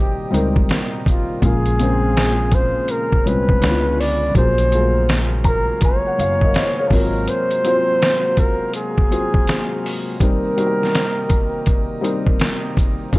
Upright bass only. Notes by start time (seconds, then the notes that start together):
0.33 C#2
1.42 A#1
3.26 C2
3.62 C#2
4.35 A#1
6.18 F#1
6.91 G#1
13.13 A#1